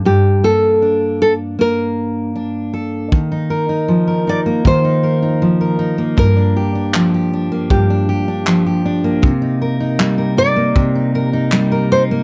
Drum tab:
CP |--------|--------|--x---x-|--x---x-|
BD |--------|o---o---|o---o---|o---o---|